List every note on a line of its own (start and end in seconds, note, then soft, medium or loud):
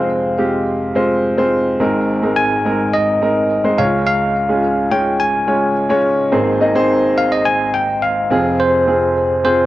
0.00 1.47 F1 medium
0.00 1.48 F2 medium
0.00 0.38 G#3 medium
0.00 0.38 C4 medium
0.00 0.39 F4 medium
0.00 0.96 C5 medium
0.00 1.47 F5 medium
0.38 0.87 G#3 medium
0.38 0.87 C4 medium
0.38 0.87 F4 medium
0.38 0.87 G4 medium
0.95 1.31 G#3 medium
0.95 1.31 C4 medium
0.95 1.31 F4 medium
0.95 1.32 C5 medium
1.37 1.74 G#3 medium
1.37 1.74 C4 medium
1.37 1.74 F4 medium
1.37 1.74 C5 medium
1.80 3.74 G#1 medium
1.80 3.74 G#2 medium
1.80 2.16 G#3 medium
1.80 2.16 C4 medium
1.80 2.16 D#4 medium
1.80 2.17 A#4 medium
2.22 2.59 G#3 medium
2.22 2.59 C4 medium
2.22 2.59 D#4 medium
2.22 2.59 A#4 medium
2.36 2.95 G#5 loud
2.65 3.13 G#3 medium
2.65 3.13 C4 medium
2.65 3.14 D#4 medium
2.65 3.14 A#4 medium
2.93 3.81 D#5 medium
3.21 3.58 G#3 medium
3.21 3.58 C4 medium
3.21 3.58 D#4 medium
3.21 3.58 A#4 medium
3.64 3.76 G#3 medium
3.64 3.78 C4 medium
3.64 3.78 D#4 medium
3.64 3.78 C5 medium
3.78 6.01 C#2 medium
3.78 6.00 C#3 medium
3.78 4.38 G#3 medium
3.78 4.38 C#4 medium
3.78 4.39 F4 medium
3.78 4.39 C#5 medium
3.78 4.05 F5 medium
4.07 4.94 F5 medium
4.49 4.85 G#3 medium
4.49 4.85 C#4 medium
4.49 4.85 F4 medium
4.49 4.85 G#4 medium
4.91 5.39 G#3 medium
4.91 5.39 C#4 medium
4.91 5.40 F4 medium
4.91 5.40 C#5 medium
4.91 5.21 G5 medium
5.20 6.01 G#5 medium
5.47 5.84 G#3 medium
5.47 5.84 C#4 medium
5.47 5.84 F4 medium
5.47 5.84 C#5 medium
5.89 6.26 G#3 medium
5.89 6.26 C#4 medium
5.89 6.26 F4 medium
5.89 6.26 C#5 medium
6.32 8.26 G#1 medium
6.32 8.27 G#2 medium
6.32 6.57 A#3 medium
6.32 6.57 C4 medium
6.32 6.57 D#4 medium
6.32 6.57 G#4 medium
6.32 6.57 C5 medium
6.60 6.73 A#3 medium
6.60 6.73 C4 medium
6.60 6.73 D#4 medium
6.60 6.73 G#4 medium
6.60 6.73 D#5 medium
6.75 7.72 A#3 medium
6.75 7.72 C4 medium
6.75 7.72 D#4 medium
6.75 7.72 G#4 medium
6.75 7.72 C5 loud
7.18 7.31 F5 medium
7.32 7.46 D#5 medium
7.45 7.75 G#5 loud
7.74 8.03 G5 loud
8.02 8.61 F5 loud
8.30 9.66 F1 medium
8.30 9.66 F2 medium
8.30 8.79 C4 medium
8.30 8.79 F4 medium
8.30 8.79 G#4 medium
8.60 9.43 C5 medium
8.87 9.36 C4 medium
8.87 9.36 F4 medium
8.87 9.36 G#4 medium
9.44 9.66 C4 medium
9.44 9.66 F4 medium
9.44 9.66 G#4 medium
9.44 9.66 C5 medium